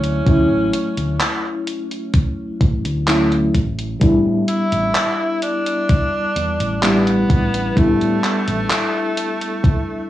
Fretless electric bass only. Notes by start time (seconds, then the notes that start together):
Already playing: D2
0.26 D2
0.51 A1
0.97 D2
2.61 A1
2.85 D2
3.55 A1
4.01 A1
4.26 A2
4.72 A1
6.36 E2
6.60 A1
7.30 A1
7.77 A1
8.01 A2
8.48 A1